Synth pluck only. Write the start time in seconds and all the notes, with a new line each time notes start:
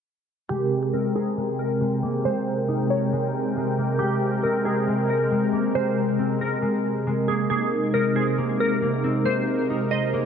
0.49 G4
0.94 A#4
1.16 G#4
1.59 A#4
2.25 C5
2.90 C#5
3.99 G4
4.43 A#4
4.65 G#4
5.10 A#4
5.75 C5
6.41 A#4
7.28 G#4
7.50 G#4
7.94 A#4
8.16 G#4
8.60 A#4
9.26 C5
9.91 D#5